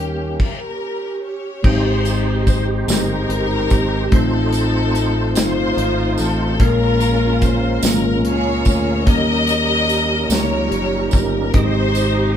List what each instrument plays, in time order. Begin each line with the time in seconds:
Already playing: fingered electric bass D#2, tine electric piano D#3 G3 C#4 D#4 A#4, tonewheel organ D#3 A#3 C#4 G4, string section A#3 C#4 G4, grand piano G4
0.40 string section C#4 G4 A#4, kick, crash
1.25 string section C#5
1.63 fingered electric bass G#1, tine electric piano G#2 G#3 C4 D#4 G4 C5, tonewheel organ G#3 C4 D#4 G4 C5, string section D#4 G4 C5, kick, crash
2.05 closed hi-hat, tambourine
2.47 string section C5, kick, closed hi-hat, tambourine
2.87 fingered electric bass G1, tine electric piano G#3 C4 D#4 G4 C5, string section A#4, snare, closed hi-hat, tambourine
2.91 string section D#4 G4
3.29 fingered electric bass G1, closed hi-hat
3.70 fingered electric bass G#1, kick, closed hi-hat, tambourine
4.10 fingered electric bass A1, tine electric piano A2 A3 C4 D#4 F4, tonewheel organ A3 C4 D#4 F4 C5, string section C4 D#4 A4, kick, closed hi-hat
4.15 tine electric piano C5
4.53 closed hi-hat, tambourine
4.95 closed hi-hat, tambourine
5.35 fingered electric bass G1, tine electric piano A3 C4 D#4 F4 A4, string section D#4 F4 C5, snare, closed hi-hat, tambourine
5.77 fingered electric bass G#1, closed hi-hat
6.18 fingered electric bass A1, string section A4, closed hi-hat, tambourine
6.58 fingered electric bass A#1, tine electric piano A#2 G#3 A#3 C#4 F4 A#4, tonewheel organ G#3 A#3 C#4 F4 A#4, string section C#4 F4 A#4, kick, closed hi-hat
7.00 closed hi-hat, tambourine
7.42 string section C5, kick, closed hi-hat, tambourine
7.81 fingered electric bass G#1, tine electric piano G#3 A#3 C#4 F4, snare, closed hi-hat, tambourine
7.85 string section A#4, tine electric piano A#4
8.24 fingered electric bass C#2, string section F4 G#4 C#5, closed hi-hat
8.65 fingered electric bass D2, kick, closed hi-hat, tambourine
9.05 fingered electric bass D#2, tine electric piano D#3 G3 A#3 C#4 D#4 A4, tonewheel organ G3 A#3 C#4 D#4 A#4, string section G4 A#4 D#5, kick, closed hi-hat
9.15 tine electric piano A#4
9.47 closed hi-hat, tambourine
9.89 closed hi-hat, tambourine
10.29 fingered electric bass C#2, tine electric piano F#3 A#3 C#4 D#4, string section G4 A#4 C#5, snare, closed hi-hat, tambourine
10.33 tine electric piano G3 F4
10.71 fingered electric bass F#1, closed hi-hat
11.11 fingered electric bass G1, string section A#4, kick, closed hi-hat, tambourine
11.52 fingered electric bass G#1, tine electric piano G#2 G#3 C4 D#4 G4 A#4, tonewheel organ C3 G#3 D#4 G4 D#5, string section C5, kick, closed hi-hat
11.56 string section D#4 G4
11.62 tine electric piano C5
11.95 closed hi-hat, tambourine